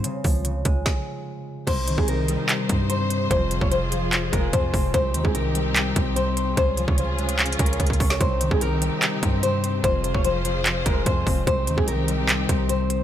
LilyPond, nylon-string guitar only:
\new Staff \with { instrumentName = "Nylon-string guitar" } { \time 4/4 \key c \phrygian \tempo 4 = 147 r1 | c''8. aes'16 bes'2 c''4 | c''8. des''16 c''4. bes'8 c''4 | c''8. aes'16 bes'2 c''4 |
c''8. des''16 c''4. bes'4. | c''8. aes'16 bes'2 c''4 | c''8. des''16 c''4. bes'8 c''4 | c''8. aes'16 bes'2 c''4 | }